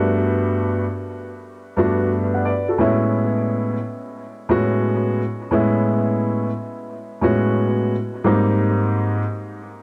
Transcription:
0.00 0.83 G2 medium
0.00 0.83 A3 medium
0.00 0.84 B3 medium
0.00 0.84 D4 medium
0.00 0.84 F#4 medium
1.77 2.48 G2 medium
1.77 2.49 A3 medium
1.77 2.49 B3 medium
1.77 2.49 D4 medium
1.77 2.12 F#4 medium
2.34 2.44 D5 soft
2.34 2.45 F#5 medium
2.45 2.67 B4 medium
2.45 2.66 D5 medium
2.68 3.01 F#4 soft
2.68 3.00 A4 medium
2.78 3.76 A2 medium
2.78 3.76 G#3 medium
2.78 3.76 B3 medium
2.78 3.77 C#4 medium
2.78 3.77 E4 medium
4.49 5.21 A2 medium
4.49 5.21 G#3 medium
4.49 5.22 B3 medium
4.49 5.22 C#4 medium
4.49 5.22 F#4 medium
5.51 6.48 A2 medium
5.51 6.49 G#3 medium
5.51 6.49 B3 medium
5.51 6.49 C#4 medium
5.51 6.49 E4 medium
7.21 7.94 A2 medium
7.21 7.94 G#3 medium
7.21 7.94 B3 medium
7.21 7.94 C#4 medium
7.21 7.95 F#4 medium
8.24 9.21 G#2 medium
8.24 9.22 G3 medium
8.24 9.22 A#3 medium
8.24 9.22 C4 medium
8.24 9.23 D#4 medium

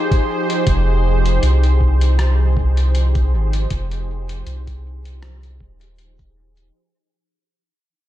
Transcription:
0.00 6.75 F3 medium
0.00 6.75 D#4 medium
0.00 6.75 G4 medium
0.00 6.75 G#4 medium
0.00 6.79 C5 medium
0.11 kick loud
0.11 closed hi-hat soft
0.50 closed hi-hat soft
0.67 1.39 F1 loud
0.67 kick loud
0.67 closed hi-hat medium
1.26 closed hi-hat soft
1.43 3.34 C2 medium
1.43 closed hi-hat medium
1.64 closed hi-hat soft
1.81 kick medium
2.01 closed hi-hat soft
2.19 cross-stick medium
2.19 closed hi-hat medium
2.57 kick loud
2.77 closed hi-hat soft
2.95 closed hi-hat medium
3.15 kick loud
3.15 closed hi-hat soft
3.33 3.67 G#1 loud
3.53 closed hi-hat soft
3.70 4.43 F1 loud
3.70 kick loud
3.70 closed hi-hat medium
3.91 closed hi-hat soft
4.29 closed hi-hat soft
4.46 5.62 C2 medium
4.46 closed hi-hat medium
4.67 kick medium
4.67 closed hi-hat soft
5.05 closed hi-hat soft
5.23 cross-stick medium
5.23 closed hi-hat medium
5.43 closed hi-hat soft
5.60 6.71 D#1 medium
5.60 kick loud
5.81 closed hi-hat soft
5.99 closed hi-hat medium
6.19 kick loud
6.19 closed hi-hat soft
6.57 closed hi-hat soft

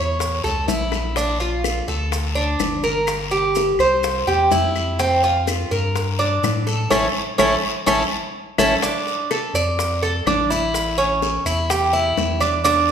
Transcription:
0.00 0.41 E2 medium
0.00 0.43 C#5 medium
0.19 high bongo medium
0.19 long guiro medium
0.19 maracas medium
0.44 0.67 C#2 medium
0.44 0.67 A4 medium
0.44 high bongo soft
0.44 maracas soft
0.68 1.82 A#1 medium
0.68 1.15 E4 medium
0.68 high bongo soft
0.68 low bongo medium
0.68 short guiro medium
0.68 maracas medium
0.92 high bongo medium
0.92 short guiro medium
0.92 claves medium
0.92 maracas soft
1.16 1.40 D4 medium
1.16 high bongo medium
1.16 long guiro medium
1.16 maracas medium
1.40 1.87 F4 medium
1.40 maracas soft
1.64 high bongo medium
1.64 short guiro medium
1.64 claves medium
1.64 maracas medium
1.88 2.56 D2 loud
1.88 2.35 A4 medium
1.88 high bongo soft
1.88 short guiro medium
1.88 maracas soft
2.12 high bongo medium
2.12 long guiro medium
2.12 maracas medium
2.35 2.82 D4 medium
2.35 high bongo soft
2.35 maracas soft
2.59 3.73 G1 medium
2.59 high bongo soft
2.59 low bongo medium
2.59 short guiro medium
2.59 claves medium
2.59 maracas medium
2.84 3.30 A#4 medium
2.84 high bongo soft
2.84 short guiro medium
2.84 maracas soft
3.07 high bongo medium
3.07 long guiro medium
3.07 claves medium
3.07 maracas medium
3.31 3.78 G4 medium
3.31 maracas soft
3.55 high bongo medium
3.55 short guiro medium
3.55 maracas medium
3.79 4.24 C2 loud
3.79 4.27 C5 medium
3.79 high bongo soft
3.79 short guiro medium
3.79 claves medium
3.79 maracas soft
4.03 high bongo medium
4.03 long guiro medium
4.03 maracas medium
4.27 4.50 E2 medium
4.27 4.51 G4 medium
4.27 high bongo soft
4.27 maracas soft
4.51 5.65 F2 loud
4.51 4.98 E4 medium
4.51 high bongo soft
4.51 low bongo medium
4.51 short guiro medium
4.51 maracas medium
4.75 high bongo soft
4.75 short guiro medium
4.75 claves medium
4.75 maracas soft
4.99 5.23 C4 medium
4.99 high bongo medium
4.99 long guiro medium
4.99 maracas medium
5.24 5.70 F4 medium
5.24 maracas soft
5.47 high bongo medium
5.47 short guiro medium
5.47 claves medium
5.47 maracas medium
5.71 6.39 G2 medium
5.71 6.18 A#4 medium
5.71 high bongo soft
5.71 short guiro medium
5.71 maracas soft
5.96 high bongo medium
5.96 long guiro medium
5.96 maracas medium
6.19 6.66 D4 medium
6.19 high bongo soft
6.19 maracas soft
6.43 6.88 A2 loud
6.43 high bongo soft
6.43 low bongo medium
6.43 short guiro medium
6.43 claves medium
6.43 maracas medium
6.67 6.89 A4 medium
6.67 high bongo soft
6.67 short guiro medium
6.67 maracas soft
6.90 7.09 A1 medium
6.90 7.06 C#4 loud
6.90 7.06 E4 medium
6.90 7.06 A4 medium
6.90 low bongo medium
6.90 long guiro loud
6.90 claves loud
6.90 maracas medium
7.38 7.57 A1 medium
7.38 7.54 C#4 loud
7.38 7.54 E4 medium
7.38 7.54 A4 medium
7.38 low bongo medium
7.38 long guiro loud
7.38 claves loud
7.38 maracas medium
7.86 8.05 A1 medium
7.86 8.02 C#4 loud
7.86 8.02 E4 medium
7.86 8.02 A4 loud
7.86 low bongo medium
7.86 long guiro medium
7.86 claves loud
7.86 maracas medium
8.58 8.76 A1 loud
8.58 8.74 C#4 medium
8.58 8.74 E4 medium
8.58 8.74 A4 medium
8.58 low bongo loud
8.58 long guiro loud
8.58 claves medium
8.58 maracas medium
8.82 9.29 D4 medium
8.82 high bongo medium
8.82 long guiro medium
8.82 maracas medium
9.07 high bongo soft
9.07 maracas soft
9.31 9.54 A4 medium
9.31 high bongo medium
9.31 short guiro medium
9.31 claves medium
9.31 maracas soft
9.54 10.22 F2 loud
9.54 10.01 D5 medium
9.54 short guiro medium
9.54 maracas medium
9.79 high bongo medium
9.79 long guiro medium
9.79 maracas medium
10.03 10.26 A4 medium
10.03 high bongo soft
10.03 maracas soft
10.26 11.39 A1 loud
10.26 10.50 D4 medium
10.26 high bongo soft
10.26 low bongo medium
10.26 short guiro medium
10.26 claves medium
10.26 maracas soft
10.50 10.97 E4 medium
10.50 high bongo soft
10.50 short guiro medium
10.50 maracas medium
10.74 high bongo medium
10.74 long guiro medium
10.74 claves medium
10.74 maracas medium
10.98 11.44 C#4 medium
10.98 high bongo soft
10.98 maracas soft
11.22 high bongo medium
11.22 short guiro medium
11.22 maracas soft
11.45 12.13 E2 loud
11.45 11.69 E4 medium
11.45 short guiro medium
11.45 claves medium
11.45 maracas medium
11.70 11.93 G4 medium
11.70 high bongo medium
11.70 long guiro medium
11.70 maracas medium
11.93 12.40 E4 medium
11.93 high bongo soft
11.93 maracas soft
12.17 12.91 E2 loud
12.17 high bongo soft
12.17 low bongo medium
12.17 short guiro medium
12.17 maracas soft
12.40 12.63 D4 medium
12.40 high bongo soft
12.40 short guiro medium
12.40 claves medium
12.40 maracas medium
12.64 12.91 D4 medium
12.64 high bongo medium
12.64 long guiro medium
12.64 maracas medium
12.88 maracas soft

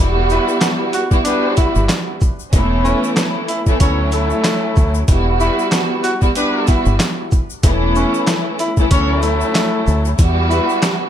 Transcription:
0.00 0.38 E1 loud
0.00 1.01 G3 loud
0.00 1.01 B3 loud
0.00 1.01 E4 loud
0.00 1.02 F#4 loud
0.29 0.45 B3 medium
0.29 0.59 E4 medium
0.29 0.45 G4 medium
0.29 0.45 B4 loud
0.29 shaker medium
0.48 shaker medium
0.61 snare loud
0.61 clap medium
0.61 closed hi-hat medium
0.61 shaker medium
0.93 1.09 F#4 medium
0.93 closed hi-hat medium
0.93 shaker medium
1.10 1.23 G3 loud
1.10 1.24 B3 medium
1.10 1.24 E4 medium
1.10 1.25 F#4 loud
1.10 kick medium
1.10 shaker medium
1.24 2.14 G3 loud
1.24 2.14 B3 medium
1.24 1.68 B3 loud
1.24 1.53 D4 medium
1.24 2.14 E4 loud
1.24 2.15 F#4 loud
1.24 1.68 G4 loud
1.24 1.68 B4 loud
1.24 closed hi-hat loud
1.24 shaker medium
1.57 1.86 E4 medium
1.57 kick loud
1.57 closed hi-hat medium
1.57 shaker medium
1.75 1.87 G1 medium
1.75 shaker medium
1.89 snare loud
1.89 clap loud
1.89 closed hi-hat medium
1.89 shaker medium
2.21 kick loud
2.21 shaker medium
2.22 shaker medium
2.39 shaker medium
2.53 2.93 E1 loud
2.53 3.56 E3 loud
2.53 3.57 A3 loud
2.53 3.57 B3 loud
2.53 3.57 C#4 loud
2.53 3.57 E4 loud
2.53 kick loud
2.53 closed hi-hat loud
2.53 shaker medium
2.84 3.13 C#4 medium
2.84 3.00 C#4 medium
2.84 3.00 E4 medium
2.84 3.00 B4 medium
2.84 shaker medium
3.04 shaker medium
3.16 snare loud
3.16 clap medium
3.16 closed hi-hat medium
3.16 shaker medium
3.48 3.65 E4 medium
3.48 closed hi-hat medium
3.48 shaker medium
3.66 3.85 E3 loud
3.66 3.79 A3 medium
3.66 3.86 B3 medium
3.66 3.79 C#4 medium
3.66 3.80 E4 loud
3.66 kick medium
3.66 shaker medium
3.79 4.99 D2 loud
3.79 4.32 D2 loud
3.79 4.99 F#3 loud
3.79 4.99 A3 medium
3.79 4.99 C#4 medium
3.79 4.09 C#4 medium
3.79 4.99 E4 loud
3.79 4.01 F#4 medium
3.79 4.01 A4 medium
3.79 4.01 C#5 loud
3.79 kick medium
3.79 closed hi-hat loud
3.79 shaker medium
4.12 5.04 A3 medium
4.12 closed hi-hat medium
4.12 shaker medium
4.30 shaker soft
4.44 snare loud
4.44 clap loud
4.44 closed hi-hat medium
4.44 shaker medium
4.76 5.03 D2 medium
4.76 kick loud
4.76 shaker medium
4.94 shaker medium
5.07 5.48 E1 loud
5.07 6.11 G3 loud
5.07 6.12 B3 loud
5.07 6.12 E4 loud
5.07 6.12 F#4 loud
5.07 kick loud
5.07 closed hi-hat loud
5.07 shaker medium
5.40 5.55 B3 medium
5.40 5.69 E4 medium
5.40 5.55 G4 medium
5.40 5.55 B4 medium
5.40 shaker medium
5.59 shaker medium
5.72 snare loud
5.72 clap medium
5.72 closed hi-hat medium
5.72 shaker medium
6.03 6.20 F#4 medium
6.03 closed hi-hat medium
6.03 shaker medium
6.20 6.34 G3 loud
6.20 6.34 B3 medium
6.20 6.35 E4 medium
6.20 6.35 F#4 loud
6.20 kick medium
6.20 shaker medium
6.35 7.24 G3 loud
6.35 7.25 B3 medium
6.35 6.78 B3 loud
6.35 6.65 D4 medium
6.35 7.25 E4 medium
6.35 7.25 F#4 loud
6.35 6.78 G4 loud
6.35 6.78 B4 loud
6.35 closed hi-hat loud
6.35 shaker medium
6.67 6.97 E4 medium
6.67 kick loud
6.67 closed hi-hat medium
6.67 shaker medium
6.86 6.97 G1 loud
6.86 shaker medium
7.00 snare loud
7.00 clap loud
7.00 closed hi-hat medium
7.00 shaker medium
7.31 kick loud
7.31 shaker medium
7.50 shaker medium
7.63 8.04 E1 loud
7.63 8.67 E3 loud
7.63 8.67 A3 loud
7.63 8.67 B3 loud
7.63 8.68 C#4 loud
7.63 8.68 E4 loud
7.63 kick loud
7.63 closed hi-hat loud
7.63 shaker medium
7.95 8.10 C#4 loud
7.95 8.25 C#4 medium
7.95 8.10 E4 medium
7.95 8.10 B4 medium
7.95 shaker medium
8.14 shaker medium
8.27 snare loud
8.27 clap medium
8.27 closed hi-hat medium
8.27 shaker medium
8.59 8.76 E4 medium
8.59 closed hi-hat medium
8.59 shaker medium
8.77 8.96 E3 loud
8.77 8.90 A3 medium
8.77 8.96 B3 medium
8.77 8.90 C#4 medium
8.77 8.91 E4 loud
8.77 kick medium
8.77 shaker medium
8.90 10.09 D2 loud
8.90 9.43 D2 loud
8.90 10.09 F#3 loud
8.90 10.10 A3 medium
8.90 9.20 C#4 medium
8.90 10.10 C#4 medium
8.90 10.10 E4 loud
8.90 9.34 F#4 loud
8.90 9.34 A4 loud
8.90 9.34 C#5 loud
8.90 kick loud
8.90 closed hi-hat loud
8.90 shaker medium
9.22 10.14 A3 loud
9.22 closed hi-hat medium
9.22 shaker medium
9.41 shaker medium
9.55 snare loud
9.55 clap loud
9.55 closed hi-hat medium
9.55 shaker medium
9.86 10.13 D2 loud
9.86 shaker medium
10.05 shaker medium
10.17 10.59 E2 loud
10.17 11.09 G3 loud
10.17 11.09 B3 loud
10.17 11.09 E4 loud
10.17 11.09 F#4 loud
10.17 kick loud
10.17 closed hi-hat loud
10.17 shaker medium
10.50 10.66 B3 medium
10.50 10.79 E4 medium
10.50 10.66 G4 medium
10.50 10.66 B4 loud
10.50 shaker medium
10.69 shaker medium
10.82 snare loud
10.82 clap medium
10.82 closed hi-hat medium
10.82 shaker medium

